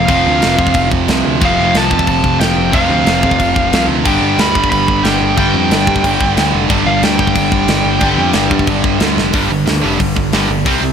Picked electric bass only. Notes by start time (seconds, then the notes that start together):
0.08 F1
0.27 D2
0.43 F1
0.58 F2
0.75 F1
0.92 F1
1.08 C2
1.25 D2
1.41 F1
1.59 F1
1.75 C2
1.91 F1
2.07 F1
2.24 F1
2.40 F1
2.56 F1
2.73 F1
2.89 D2
3.05 F1
3.23 F2
3.40 F1
3.56 F1
3.72 C2
3.88 D2
4.05 G1
4.21 G1
4.38 D2
4.55 G1
4.72 G1
4.88 G1
5.04 G1
5.21 G1
5.38 G1
5.54 F2
5.71 G1
5.87 G2
6.04 G1
6.21 G1
6.37 D2
6.53 F1
6.69 G1
6.86 G1
7.03 D2
7.19 G1
7.36 G1
7.52 G1
7.68 G1
7.85 G1
8.01 G1
8.17 F2
8.34 G1
8.51 G2
8.67 G1
8.84 G1
9.01 D2
9.17 F1
9.34 G1
9.50 G1
9.68 D2
9.84 F1
10.00 G1
10.17 G1
10.33 G1
10.49 G1
10.66 C2
10.81 C2